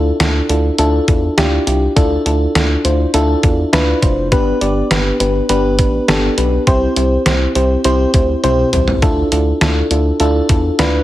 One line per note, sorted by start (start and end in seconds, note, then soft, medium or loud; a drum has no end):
0.00 0.11 D2 loud
0.00 0.17 D4 medium
0.00 0.17 E4 medium
0.00 0.17 F4 medium
0.00 0.17 A4 medium
0.20 0.41 D2 loud
0.20 0.46 D4 medium
0.20 0.46 E4 medium
0.20 0.46 F4 medium
0.20 0.46 A4 loud
0.20 snare loud
0.20 closed hi-hat medium
0.49 0.70 D2 medium
0.49 0.75 D4 medium
0.49 0.75 E4 medium
0.49 0.75 F4 medium
0.49 0.75 A4 medium
0.49 closed hi-hat medium
0.78 0.99 D2 loud
0.78 1.05 D4 loud
0.78 1.05 E4 loud
0.78 1.05 F4 loud
0.78 1.05 A4 loud
0.78 closed hi-hat medium
1.08 1.29 E2 medium
1.08 1.34 D4 medium
1.08 1.34 E4 medium
1.08 1.34 F4 medium
1.08 1.34 A4 medium
1.08 kick loud
1.08 closed hi-hat medium
1.38 1.58 D2 loud
1.38 1.64 D4 loud
1.38 1.64 E4 loud
1.38 1.64 F4 loud
1.38 1.64 G4 loud
1.38 snare loud
1.38 closed hi-hat medium
1.67 1.88 C2 medium
1.67 1.93 D4 medium
1.67 1.93 E4 medium
1.67 1.93 F4 medium
1.67 1.93 G4 medium
1.67 closed hi-hat medium
1.96 2.17 D2 loud
1.96 2.22 D4 loud
1.96 2.22 E4 loud
1.96 2.22 F4 loud
1.96 2.22 A4 loud
1.96 kick loud
1.96 closed hi-hat medium
2.26 2.46 D2 loud
2.26 2.52 D4 medium
2.26 2.52 E4 medium
2.26 2.52 F4 medium
2.26 2.52 A4 loud
2.26 closed hi-hat medium
2.55 2.76 D2 loud
2.55 2.81 D4 medium
2.55 2.81 E4 medium
2.55 2.81 F4 medium
2.55 2.81 A4 medium
2.55 snare loud
2.55 closed hi-hat medium
2.85 3.05 D2 loud
2.85 3.11 D4 medium
2.85 3.11 E4 medium
2.85 3.11 F4 medium
2.85 3.11 C5 medium
2.85 closed hi-hat medium
3.14 3.35 D2 loud
3.14 3.40 D4 loud
3.14 3.40 E4 loud
3.14 3.40 F4 loud
3.14 3.40 A4 loud
3.14 closed hi-hat medium
3.43 3.64 E2 loud
3.43 3.70 D4 medium
3.43 3.69 E4 medium
3.43 3.70 F4 medium
3.43 3.70 A4 medium
3.43 kick loud
3.43 closed hi-hat medium
3.73 3.94 D2 loud
3.73 3.99 D4 loud
3.73 3.99 E4 loud
3.73 3.99 F4 loud
3.73 3.99 B4 loud
3.73 snare loud
3.73 closed hi-hat medium
4.02 4.33 F1 medium
4.02 4.28 D4 medium
4.02 4.28 E4 medium
4.02 4.28 F4 medium
4.02 4.28 C5 loud
4.02 kick medium
4.02 closed hi-hat medium
4.32 4.52 G1 loud
4.32 4.58 B3 loud
4.32 4.58 D4 loud
4.32 4.58 G4 loud
4.32 4.58 B4 loud
4.32 kick loud
4.32 closed hi-hat medium
4.61 4.82 G1 loud
4.61 4.87 B3 medium
4.61 4.87 D4 medium
4.61 4.87 G4 medium
4.61 4.87 D5 medium
4.61 closed hi-hat medium
4.91 5.11 G1 loud
4.91 5.17 B3 medium
4.91 5.17 D4 medium
4.91 5.17 G4 medium
4.91 5.17 B4 medium
4.91 snare loud
4.91 closed hi-hat medium
5.20 5.41 G1 loud
5.20 5.46 B3 medium
5.20 5.46 D4 medium
5.20 5.46 G4 medium
5.20 5.46 B4 medium
5.20 closed hi-hat medium
5.49 5.80 G1 loud
5.49 5.75 B3 loud
5.49 5.75 D4 loud
5.49 5.75 G4 loud
5.49 5.75 B4 loud
5.49 closed hi-hat medium
5.79 5.99 A1 medium
5.79 6.05 B3 medium
5.79 6.05 D4 medium
5.79 6.05 G4 medium
5.79 6.05 B4 loud
5.79 kick loud
5.79 closed hi-hat medium
6.08 6.29 G1 loud
6.08 6.34 B3 loud
6.08 6.34 D4 loud
6.08 6.34 G4 loud
6.08 6.34 A4 loud
6.08 snare loud
6.08 closed hi-hat medium
6.38 6.58 B1 loud
6.38 6.64 B3 medium
6.38 6.64 D4 medium
6.38 6.64 G4 medium
6.38 6.64 B4 medium
6.38 closed hi-hat medium
6.67 6.88 C2 loud
6.67 6.93 C4 loud
6.67 6.93 E4 loud
6.67 6.93 G4 loud
6.67 6.93 C5 loud
6.67 kick loud
6.67 closed hi-hat medium
6.96 7.17 C2 loud
6.96 7.22 C4 medium
6.96 7.22 E4 medium
6.96 7.22 G4 medium
6.96 7.23 C5 medium
6.96 closed hi-hat medium
7.26 7.47 C2 loud
7.26 7.52 C4 medium
7.26 7.52 E4 medium
7.26 7.52 G4 medium
7.26 7.52 C5 loud
7.26 snare loud
7.26 closed hi-hat medium
7.55 7.76 C2 loud
7.55 7.81 C4 medium
7.55 7.81 E4 medium
7.55 7.81 G4 medium
7.55 7.81 C5 loud
7.55 closed hi-hat medium
7.84 8.05 C2 loud
7.84 8.11 C4 loud
7.84 8.11 E4 loud
7.84 8.11 G4 loud
7.84 8.11 C5 loud
7.84 closed hi-hat medium
8.14 8.35 D2 medium
8.14 8.40 C4 medium
8.14 8.40 E4 medium
8.14 8.40 G4 medium
8.14 8.40 C5 medium
8.14 kick loud
8.14 closed hi-hat medium
8.44 8.64 C2 medium
8.44 8.70 C4 loud
8.44 8.70 E4 loud
8.44 8.70 G4 loud
8.44 8.70 C5 loud
8.44 closed hi-hat medium
8.44 high tom medium
8.73 8.94 C2 medium
8.73 8.99 C4 medium
8.73 8.99 E4 medium
8.73 8.99 G4 medium
8.73 8.99 C5 medium
8.73 closed hi-hat medium
8.73 mid tom loud
8.88 floor tom loud
9.02 9.23 D2 loud
9.02 9.28 D4 loud
9.02 9.28 E4 loud
9.02 9.28 F4 loud
9.02 9.28 A4 loud
9.02 kick loud
9.02 closed hi-hat medium
9.32 9.52 D2 loud
9.32 9.58 D4 medium
9.32 9.58 E4 medium
9.32 9.58 F4 medium
9.32 9.58 A4 medium
9.32 closed hi-hat medium
9.61 9.82 D2 loud
9.61 9.87 D4 medium
9.61 9.87 E4 medium
9.61 9.87 F4 medium
9.61 9.87 A4 loud
9.61 snare loud
9.61 closed hi-hat medium
9.91 10.11 D2 loud
9.91 10.17 D4 medium
9.91 10.17 E4 medium
9.91 10.17 F4 medium
9.91 10.17 A4 loud
9.91 closed hi-hat medium
10.20 10.41 D2 loud
10.20 10.46 D4 loud
10.20 10.46 E4 loud
10.20 10.46 F4 loud
10.20 10.46 A4 loud
10.20 closed hi-hat medium
10.49 10.70 E2 medium
10.49 10.75 D4 medium
10.49 10.75 E4 medium
10.49 10.75 F4 medium
10.49 10.75 A4 loud
10.49 kick loud
10.49 closed hi-hat medium
10.79 11.00 D2 loud
10.79 11.03 D4 loud
10.79 11.03 E4 loud
10.79 11.03 F4 loud
10.79 11.03 B4 loud
10.79 snare loud
10.79 closed hi-hat medium